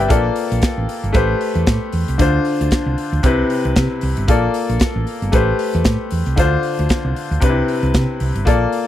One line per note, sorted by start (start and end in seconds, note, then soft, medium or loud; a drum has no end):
0.00 0.12 C3 medium
0.00 0.12 C4 medium
0.00 0.12 E4 medium
0.00 0.12 G4 medium
0.00 0.24 B4 medium
0.00 0.11 D5 medium
0.00 0.12 E5 medium
0.00 0.23 G5 medium
0.08 0.29 A#1 loud
0.08 1.12 A#3 medium
0.08 1.12 F4 medium
0.08 1.13 A4 medium
0.08 1.13 D5 medium
0.08 kick loud
0.08 closed hi-hat medium
0.36 open hi-hat medium
0.52 0.59 A#1 medium
0.52 closed hi-hat medium
0.62 kick loud
0.62 snare loud
0.62 closed hi-hat medium
0.78 0.86 A1 medium
0.89 open hi-hat medium
1.04 1.11 G1 medium
1.04 closed hi-hat soft
1.12 1.33 A1 loud
1.12 2.16 A3 medium
1.12 2.16 G4 medium
1.12 2.17 B4 medium
1.12 2.18 C5 medium
1.12 kick loud
1.12 closed hi-hat medium
1.41 open hi-hat medium
1.55 1.64 E2 loud
1.55 closed hi-hat soft
1.67 1.78 A2 loud
1.67 kick loud
1.67 snare loud
1.67 closed hi-hat medium
1.92 2.04 E2 medium
1.92 open hi-hat medium
2.08 2.16 C2 medium
2.08 closed hi-hat medium
2.18 2.38 D2 loud
2.18 3.21 D3 medium
2.18 3.22 D4 medium
2.18 3.22 F4 medium
2.18 3.23 C5 medium
2.18 kick loud
2.18 closed hi-hat medium
2.45 open hi-hat medium
2.61 2.69 D2 medium
2.61 closed hi-hat medium
2.71 kick loud
2.71 snare loud
2.71 closed hi-hat medium
2.86 2.94 C2 loud
2.98 open hi-hat medium
3.13 3.21 D2 medium
3.13 closed hi-hat soft
3.23 3.42 C2 medium
3.23 4.26 C3 medium
3.23 4.26 C4 medium
3.23 4.27 E4 medium
3.23 4.27 B4 medium
3.23 kick loud
3.23 closed hi-hat medium
3.50 open hi-hat medium
3.65 3.73 C2 loud
3.65 closed hi-hat soft
3.76 3.87 C3 medium
3.76 kick medium
3.76 snare loud
3.76 closed hi-hat medium
4.01 4.13 C2 medium
4.01 open hi-hat medium
4.17 4.25 G1 loud
4.17 closed hi-hat medium
4.28 4.47 A#1 medium
4.28 5.30 A#3 medium
4.28 5.31 F4 medium
4.28 5.31 A4 medium
4.28 5.32 D5 medium
4.28 kick loud
4.28 closed hi-hat medium
4.54 open hi-hat medium
4.69 4.77 A#1 medium
4.69 closed hi-hat medium
4.80 kick loud
4.80 snare loud
4.80 closed hi-hat medium
4.96 5.04 A1 medium
5.07 open hi-hat medium
5.22 5.30 G1 medium
5.22 closed hi-hat soft
5.32 5.51 A1 loud
5.32 6.35 A3 medium
5.32 6.35 G4 medium
5.32 6.36 B4 medium
5.32 6.36 C5 medium
5.32 kick loud
5.32 closed hi-hat medium
5.59 open hi-hat medium
5.74 5.82 E2 loud
5.74 closed hi-hat soft
5.84 5.96 A2 loud
5.84 kick loud
5.84 snare loud
5.84 closed hi-hat medium
6.11 6.22 E2 medium
6.11 open hi-hat medium
6.26 6.34 C2 medium
6.26 closed hi-hat medium
6.36 6.56 D2 medium
6.36 7.39 D3 medium
6.36 7.40 D4 medium
6.36 7.40 F4 medium
6.36 7.41 C5 medium
6.36 kick loud
6.36 closed hi-hat medium
6.63 open hi-hat medium
6.79 6.87 D2 medium
6.79 closed hi-hat medium
6.89 kick loud
6.89 snare loud
6.89 closed hi-hat medium
7.05 7.13 C2 medium
7.16 open hi-hat medium
7.31 7.39 D2 medium
7.31 closed hi-hat soft
7.40 7.60 C2 medium
7.40 8.44 C3 medium
7.40 8.44 C4 medium
7.40 7.49 D4 medium
7.40 8.45 B4 medium
7.40 kick loud
7.40 closed hi-hat medium
7.49 8.48 E4 medium
7.68 open hi-hat medium
7.83 7.91 C2 loud
7.83 closed hi-hat soft
7.94 8.05 C3 loud
7.94 kick loud
7.94 snare loud
7.94 closed hi-hat medium
8.20 8.31 C2 medium
8.20 open hi-hat medium
8.35 8.43 G1 medium
8.35 closed hi-hat medium
8.45 8.65 A#1 medium
8.45 8.87 A#3 medium
8.45 8.87 F4 medium
8.45 8.87 A4 medium
8.45 8.87 D5 medium
8.45 kick loud
8.45 closed hi-hat medium
8.72 open hi-hat medium